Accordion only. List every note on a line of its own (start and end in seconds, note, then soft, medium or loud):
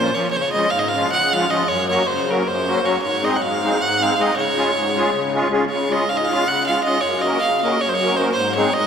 0.00 0.10 F3 medium
0.00 0.10 A#3 medium
0.00 0.11 C#4 soft
0.00 0.11 F4 medium
0.14 0.27 F3 medium
0.14 0.28 A#3 soft
0.14 0.28 C#4 medium
0.14 0.28 F4 medium
0.33 0.63 C#3 medium
0.54 0.67 F3 medium
0.54 0.68 G#3 medium
0.54 0.68 C#4 medium
0.54 0.68 F4 medium
0.72 1.02 G#2 medium
0.94 1.07 F3 medium
0.94 1.07 G#3 soft
0.94 1.08 C#4 soft
0.94 1.08 F4 medium
1.12 1.40 C#3 medium
1.32 1.45 F3 medium
1.32 1.46 G#3 medium
1.32 1.46 C#4 medium
1.32 1.46 F4 medium
1.49 1.62 F3 medium
1.49 1.63 G#3 medium
1.49 1.63 C#4 medium
1.49 1.63 F4 medium
1.67 1.97 F#2 medium
1.88 2.02 F#3 medium
1.88 2.02 A#3 medium
1.88 2.03 C#4 medium
1.88 2.03 F#4 medium
2.07 2.37 C#3 medium
2.28 2.42 F#3 medium
2.28 2.42 A#3 soft
2.28 2.43 C#4 soft
2.28 2.43 F#4 medium
2.46 2.75 F#2 medium
2.65 2.79 F#3 medium
2.65 2.80 A#3 soft
2.65 2.80 C#4 soft
2.65 2.80 F#4 medium
2.82 2.96 F#3 medium
2.82 2.96 A#3 medium
2.82 2.97 C#4 medium
2.82 2.97 F#4 medium
3.01 3.32 G#2 medium
3.22 3.36 G#3 medium
3.22 3.37 C4 medium
3.22 3.37 D#4 medium
3.22 3.37 G#4 medium
3.41 3.72 G#2 medium
3.63 3.77 G#3 medium
3.63 3.77 C4 medium
3.63 3.77 D#4 soft
3.63 3.78 G#4 medium
3.82 4.10 G#2 medium
3.99 4.13 G#3 medium
3.99 4.14 C4 medium
3.99 4.14 D#4 medium
3.99 4.14 G#4 medium
4.17 4.31 G#3 medium
4.17 4.31 C4 medium
4.17 4.31 D#4 soft
4.17 4.32 G#4 medium
4.36 4.66 C#3 medium
4.56 4.70 G#3 medium
4.56 4.70 C#4 medium
4.56 4.71 F4 medium
4.56 4.71 G#4 medium
4.75 5.05 G#2 medium
4.95 5.10 G#3 medium
4.95 5.10 C#4 medium
4.95 5.10 F4 medium
4.95 5.11 G#4 medium
5.13 5.42 C#3 medium
5.33 5.47 G#3 medium
5.33 5.48 C#4 medium
5.33 5.48 F4 medium
5.33 5.48 G#4 medium
5.50 5.64 G#3 medium
5.50 5.65 C#4 medium
5.50 5.65 F4 medium
5.50 5.65 G#4 medium
5.68 5.99 C#3 medium
5.89 6.04 G#3 medium
5.89 6.04 C#4 medium
5.89 6.04 F4 medium
5.89 6.04 G#4 medium
6.07 6.38 G#2 medium
6.29 6.43 G#3 medium
6.29 6.43 C#4 medium
6.29 6.44 F4 medium
6.29 6.44 G#4 medium
6.48 6.76 C#3 medium
6.67 6.81 G#3 medium
6.67 6.81 C#4 medium
6.67 6.81 F4 medium
6.67 6.81 G#4 medium
6.84 6.98 G#3 medium
6.84 6.98 C#4 medium
6.84 6.98 F4 soft
6.84 6.98 G#4 medium
7.02 7.32 F#2 medium
7.24 7.37 A#3 medium
7.24 7.38 C#4 medium
7.24 7.38 F#4 medium
7.24 7.38 A#4 medium
7.42 7.72 C#3 medium
7.63 7.77 A#3 medium
7.63 7.77 C#4 medium
7.63 7.77 F#4 medium
7.63 7.78 A#4 medium
7.82 8.10 F#2 medium
8.02 8.14 A#3 medium
8.02 8.15 C#4 medium
8.02 8.15 F#4 medium
8.02 8.15 A#4 medium
8.17 8.31 A#3 medium
8.17 8.31 C#4 medium
8.17 8.31 F#4 medium
8.17 8.32 A#4 medium
8.36 8.66 G#2 medium
8.56 8.70 G#3 medium
8.56 8.70 C4 medium
8.56 8.71 D#4 medium
8.56 8.71 G#4 medium
8.75 8.87 G#2 medium